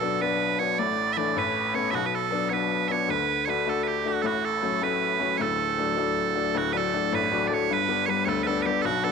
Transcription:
0.00 0.75 B1 medium
0.00 0.75 B2 medium
0.00 0.19 F#3 medium
0.00 0.20 B3 soft
0.00 0.20 D4 medium
0.00 0.21 A4 medium
0.21 0.58 F#3 medium
0.21 0.58 B3 medium
0.21 0.58 D4 medium
0.21 0.59 B4 loud
0.59 0.78 F#3 medium
0.59 0.78 B3 soft
0.59 0.78 D4 medium
0.59 0.79 C#5 loud
0.79 1.33 A1 medium
0.79 1.35 A2 medium
0.79 1.13 D5 loud
1.13 1.36 E3 soft
1.13 1.17 E5 loud
1.17 1.36 A3 soft
1.17 1.36 D4 medium
1.17 1.38 D5 loud
1.36 1.90 A1 medium
1.36 1.92 A2 medium
1.36 1.75 B4 medium
1.74 1.93 A3 soft
1.74 1.93 B3 soft
1.74 1.93 C#4 medium
1.74 1.91 C#5 medium
1.91 3.05 B1 medium
1.91 3.05 B2 medium
1.91 1.95 E5 loud
1.95 2.06 F#4 loud
2.06 2.15 B4 medium
2.15 2.49 A4 loud
2.31 2.49 F#3 medium
2.31 2.50 B3 medium
2.31 2.49 D4 medium
2.49 2.88 F#3 medium
2.49 2.88 B3 soft
2.49 2.88 D4 medium
2.49 2.88 B4 medium
2.49 2.53 C#5 medium
2.88 3.08 F#3 medium
2.88 3.08 B3 soft
2.88 3.09 D4 medium
2.88 3.10 C#5 loud
2.88 2.92 E5 loud
3.08 4.20 D2 medium
3.08 4.21 D3 medium
3.08 3.45 B4 loud
3.45 3.64 A3 medium
3.45 3.65 D4 medium
3.45 3.65 F#4 medium
3.45 3.49 C#5 loud
3.49 3.69 B4 loud
3.66 4.03 A3 medium
3.66 4.03 D4 medium
3.66 4.04 F#4 medium
3.66 3.83 A4 medium
3.83 3.88 B4 medium
3.88 4.08 G4 medium
4.04 4.23 A3 medium
4.04 4.24 D4 soft
4.04 4.24 F#4 medium
4.04 4.22 F#4 medium
4.22 5.35 A1 medium
4.22 5.36 A2 medium
4.22 4.27 A4 loud
4.27 4.45 F#4 loud
4.45 4.83 A4 medium
4.62 4.80 F#3 medium
4.62 4.80 A3 soft
4.62 4.81 C#4 medium
4.82 5.18 F#3 medium
4.82 5.18 A3 medium
4.82 5.19 C#4 medium
4.82 5.37 B4 loud
5.20 5.39 F#3 medium
5.20 5.39 A3 soft
5.20 5.39 C#4 medium
5.37 6.51 D1 medium
5.37 6.51 D2 medium
5.37 5.41 C#5 medium
5.41 6.58 A4 medium
5.78 5.95 F#3 soft
5.78 5.96 A3 soft
5.78 5.96 D4 medium
5.96 6.34 F#3 medium
5.96 6.34 A3 medium
5.96 6.34 D4 medium
6.35 6.54 F#3 soft
6.35 6.54 A3 soft
6.35 6.54 D4 medium
6.54 7.66 D1 medium
6.54 6.92 D2 medium
6.54 6.73 F#4 loud
6.73 6.92 F#3 medium
6.73 6.92 A3 soft
6.73 6.93 D4 medium
6.73 6.77 B4 loud
6.77 7.15 A4 loud
6.93 7.24 F#3 medium
6.93 7.24 A3 medium
6.93 7.24 D4 medium
7.12 7.50 A1 medium
7.12 7.47 B4 loud
7.31 7.49 F#3 medium
7.31 7.49 A3 soft
7.31 7.49 D4 medium
7.47 7.66 F#3 soft
7.47 7.66 A3 medium
7.47 7.66 D4 medium
7.47 7.54 D5 medium
7.54 7.73 C#5 loud
7.70 8.81 G1 medium
7.70 8.07 G2 medium
7.70 8.06 B4 loud
7.89 8.07 G3 medium
7.89 8.07 B3 soft
7.89 8.07 D4 medium
8.06 8.39 G3 medium
8.06 8.39 B3 soft
8.06 8.39 D4 medium
8.06 8.25 B4 loud
8.06 8.09 C#5 loud
8.25 8.64 D2 medium
8.25 8.43 A4 loud
8.25 8.28 C#5 loud
8.43 8.65 G3 medium
8.43 8.65 B3 soft
8.43 8.65 D4 medium
8.43 8.62 A4 loud
8.43 8.47 B4 loud
8.62 8.82 G4 medium
8.62 8.66 B4 medium
8.66 8.81 G3 medium
8.66 8.81 B3 medium
8.66 8.82 D4 medium
8.82 9.12 B1 medium
8.82 9.12 B2 medium
8.82 9.04 F#4 loud
8.82 8.86 A4 loud
9.03 9.12 F#3 medium
9.03 9.12 B3 soft
9.03 9.12 D4 medium
9.03 9.12 A4 loud

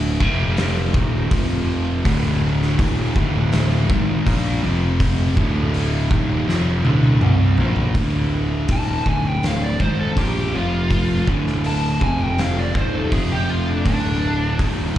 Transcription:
0.00 0.16 D1 medium
0.00 0.21 D2 medium
0.00 0.21 A2 loud
0.00 0.21 D3 loud
0.20 0.90 F1 loud
0.20 0.93 F2 loud
0.20 0.93 C3 loud
0.20 0.94 F3 loud
0.20 kick loud
0.57 snare loud
0.57 open hi-hat medium
0.94 1.28 D#1 loud
0.94 1.30 D#2 medium
0.94 1.30 A#2 loud
0.94 1.30 D#3 loud
0.94 kick loud
1.31 2.01 F1 loud
1.31 2.04 F2 loud
1.31 2.04 C3 loud
1.31 2.04 F3 loud
1.31 kick loud
1.31 open hi-hat medium
2.04 2.75 D1 loud
2.04 2.77 D2 loud
2.04 2.77 A2 loud
2.04 2.78 D3 loud
2.04 kick loud
2.04 open hi-hat medium
2.62 snare soft
2.78 3.13 D#1 medium
2.78 3.14 D#2 medium
2.78 3.15 A#2 loud
2.78 3.15 D#3 loud
2.78 kick loud
2.78 open hi-hat medium
3.15 3.85 D1 loud
3.15 3.88 D2 loud
3.15 3.88 A2 loud
3.15 3.88 D3 loud
3.15 kick loud
3.52 snare loud
3.52 open hi-hat medium
3.89 4.24 G#1 loud
3.89 4.25 G#2 medium
3.89 4.25 D#3 loud
3.89 4.26 G#3 loud
3.89 kick loud
4.26 4.61 A#1 loud
4.26 4.62 A#2 loud
4.26 4.62 F3 loud
4.26 4.62 A#3 loud
4.26 kick loud
4.26 open hi-hat medium
4.63 5.34 F1 loud
4.63 5.36 F2 loud
4.63 5.36 C3 medium
4.63 5.36 F3 loud
5.00 kick loud
5.00 open hi-hat medium
5.37 6.07 D1 medium
5.37 6.10 D2 medium
5.37 6.10 A2 loud
5.37 6.10 D3 loud
5.37 kick loud
5.74 open hi-hat medium
6.10 6.45 D#1 loud
6.10 6.46 D#2 medium
6.10 6.47 A#2 loud
6.10 6.47 D#3 loud
6.10 kick loud
6.47 6.82 F1 loud
6.47 6.83 F2 loud
6.47 6.83 C3 loud
6.47 6.83 F3 loud
6.47 snare medium
6.84 7.19 D1 loud
6.84 7.20 D2 medium
6.84 7.20 A2 loud
6.84 7.21 D3 loud
6.84 high tom medium
7.03 high tom medium
7.21 7.56 C2 medium
7.21 7.57 C3 loud
7.21 7.57 G3 loud
7.21 7.57 C4 loud
7.21 mid tom loud
7.58 7.93 A#1 loud
7.58 7.94 A#2 medium
7.58 7.94 F3 loud
7.58 7.95 A#3 loud
7.58 floor tom medium
7.76 floor tom medium
7.94 8.65 D1 loud
7.94 8.68 D2 loud
7.94 8.68 A2 medium
7.94 8.68 D3 loud
7.94 kick loud
7.94 open hi-hat medium
8.68 9.03 D#1 medium
8.68 9.05 D#2 loud
8.68 9.05 A#2 loud
8.68 9.05 D#3 loud
8.68 kick loud
8.68 open hi-hat medium
8.72 9.06 A5 medium
9.05 9.76 D1 loud
9.05 9.78 D2 medium
9.05 9.79 A2 loud
9.05 9.79 D3 medium
9.05 9.27 G#5 medium
9.05 kick loud
9.27 9.46 G5 medium
9.43 9.63 F5 medium
9.43 snare loud
9.43 open hi-hat medium
9.63 9.80 D5 medium
9.79 10.14 G#1 loud
9.79 10.15 G#2 medium
9.79 10.15 D#3 medium
9.79 10.16 G#3 loud
9.79 9.98 C5 medium
9.79 kick loud
10.01 10.17 A4 medium
10.16 10.51 A#1 medium
10.16 10.52 A#2 loud
10.16 10.53 F3 loud
10.16 10.53 A#3 loud
10.16 10.53 G4 medium
10.16 kick loud
10.16 open hi-hat medium
10.52 11.23 F1 loud
10.52 11.26 F2 medium
10.52 11.27 C3 medium
10.52 11.27 F3 loud
10.52 11.26 F4 medium
10.91 kick loud
10.91 open hi-hat medium
11.27 11.97 D1 medium
11.27 12.00 D2 medium
11.27 12.00 A2 loud
11.27 12.00 D3 medium
11.27 kick loud
11.47 snare soft
11.64 12.01 A5 medium
11.64 open hi-hat medium
12.01 12.71 F1 loud
12.01 12.74 F2 loud
12.01 12.74 C3 loud
12.01 12.74 F3 loud
12.01 12.22 G#5 loud
12.01 kick loud
12.22 12.39 G5 medium
12.38 12.57 F5 medium
12.38 snare loud
12.38 open hi-hat medium
12.60 12.76 D5 medium
12.75 13.09 D#1 loud
12.75 13.11 D#2 loud
12.75 13.11 A#2 medium
12.75 13.11 D#3 loud
12.75 12.95 C5 medium
12.75 kick loud
12.95 13.13 A4 medium
13.12 13.82 F1 loud
13.12 13.85 F2 loud
13.12 13.85 C3 loud
13.12 13.85 F3 loud
13.12 13.30 G#4 medium
13.12 kick loud
13.12 open hi-hat medium
13.32 13.50 G4 medium
13.50 13.69 F4 medium
13.69 13.86 D4 loud
13.85 14.56 D1 medium
13.85 14.58 D2 loud
13.85 14.59 A2 loud
13.85 14.59 D3 loud
13.85 14.58 D4 loud
13.85 kick medium
13.85 open hi-hat medium
14.59 14.94 D#1 medium
14.59 14.95 D#2 loud
14.59 14.96 A#2 loud
14.59 14.96 D#3 loud
14.59 kick loud
14.59 open hi-hat medium

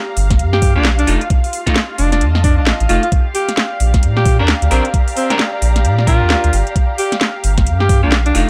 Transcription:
0.00 1.91 G4 medium
0.00 1.91 F5 medium
0.00 8.50 F5 medium
0.00 1.08 A#5 medium
0.17 0.41 G1 loud
0.17 open hi-hat loud
0.30 kick loud
0.30 snare medium
0.30 closed hi-hat medium
0.39 0.77 G2 loud
0.39 closed hi-hat medium
0.53 0.73 G4 medium
0.53 snare medium
0.62 kick loud
0.62 open hi-hat loud
0.76 1.00 A#1 loud
0.76 0.84 A#3 medium
0.76 0.88 D4 medium
0.76 0.84 F4 medium
0.76 0.84 G4 loud
0.85 snare loud
0.99 1.05 C2 loud
0.99 1.13 D4 loud
0.99 closed hi-hat soft
1.07 1.17 F1 loud
1.07 1.20 A3 medium
1.07 1.20 D#4 medium
1.07 1.20 F4 loud
1.07 3.83 F4 medium
1.07 open hi-hat loud
1.21 closed hi-hat soft
1.30 kick loud
1.30 closed hi-hat medium
1.44 open hi-hat medium
1.53 open hi-hat loud
1.67 1.75 A3 medium
1.67 1.75 D#4 medium
1.67 1.75 F4 loud
1.67 kick medium
1.67 snare medium
1.67 closed hi-hat medium
1.76 snare loud
1.84 3.12 D#5 medium
1.98 2.23 F1 loud
1.98 2.09 D4 medium
1.98 3.12 A5 medium
1.98 open hi-hat loud
2.12 2.24 D4 medium
2.12 snare medium
2.12 closed hi-hat medium
2.21 2.59 F2 loud
2.21 closed hi-hat medium
2.35 snare medium
2.44 2.53 D4 medium
2.44 kick loud
2.44 open hi-hat loud
2.58 2.72 A1 loud
2.58 2.63 D4 medium
2.67 snare loud
2.80 2.87 A1 loud
2.80 closed hi-hat soft
2.89 2.99 F1 loud
2.89 3.02 A3 medium
2.89 3.02 D#4 medium
2.89 3.02 F4 medium
2.89 2.98 F4 medium
2.89 open hi-hat loud
3.03 3.09 F4 medium
3.03 closed hi-hat soft
3.12 8.50 G4 medium
3.12 kick loud
3.12 closed hi-hat medium
3.35 3.51 G4 medium
3.35 open hi-hat loud
3.49 snare medium
3.49 closed hi-hat medium
3.54 7.27 D5 medium
3.54 snare loud
3.80 4.04 A#1 loud
3.80 open hi-hat loud
3.94 8.35 A#5 medium
3.94 kick loud
3.94 snare medium
3.94 closed hi-hat medium
4.03 4.41 A#2 loud
4.03 closed hi-hat medium
4.17 4.37 G4 medium
4.17 snare medium
4.25 kick loud
4.25 open hi-hat loud
4.39 4.54 D2 loud
4.39 4.52 D4 medium
4.39 4.48 D4 medium
4.39 4.48 G4 medium
4.39 4.48 A#4 medium
4.48 snare loud
4.62 4.68 D2 loud
4.62 closed hi-hat medium
4.71 4.81 A#1 loud
4.71 4.87 C4 medium
4.71 4.84 D4 medium
4.71 4.84 G4 medium
4.71 4.84 A#4 loud
4.71 open hi-hat loud
4.85 closed hi-hat soft
4.94 kick loud
4.94 closed hi-hat medium
5.08 open hi-hat medium
5.17 5.32 C4 medium
5.17 open hi-hat loud
5.30 5.39 D4 medium
5.30 5.39 G4 medium
5.30 5.39 A#4 loud
5.30 snare medium
5.30 closed hi-hat medium
5.39 snare loud
5.62 5.86 A#1 loud
5.62 open hi-hat loud
5.76 snare medium
5.76 closed hi-hat medium
5.84 6.23 A#2 loud
5.84 closed hi-hat medium
5.98 snare medium
6.07 6.52 D4 medium
6.07 6.58 F4 medium
6.07 6.52 G4 medium
6.07 6.52 A#4 medium
6.07 kick loud
6.07 open hi-hat loud
6.21 6.36 D2 loud
6.30 snare loud
6.44 6.50 D2 loud
6.44 closed hi-hat medium
6.53 6.63 G1 loud
6.53 open hi-hat loud
6.67 closed hi-hat soft
6.76 kick loud
6.76 closed hi-hat medium
6.98 7.14 G4 medium
6.98 open hi-hat loud
7.12 snare medium
7.12 closed hi-hat medium
7.21 snare loud
7.26 8.50 F5 medium
7.44 7.68 G1 loud
7.44 open hi-hat loud
7.58 kick loud
7.58 snare medium
7.58 closed hi-hat medium
7.66 8.05 G2 loud
7.66 closed hi-hat medium
7.80 8.00 G4 loud
7.80 snare medium
7.89 kick loud
7.89 open hi-hat loud
8.03 8.27 A#1 loud
8.03 8.11 A#3 medium
8.03 8.15 D4 medium
8.03 8.11 F4 medium
8.03 8.11 G4 medium
8.12 snare loud
8.26 8.32 C2 loud
8.26 8.40 D4 loud
8.26 closed hi-hat medium
8.35 8.44 F1 loud
8.35 8.47 A3 medium
8.35 8.47 D#4 medium
8.35 8.47 F4 loud
8.35 8.50 F4 medium
8.35 open hi-hat loud

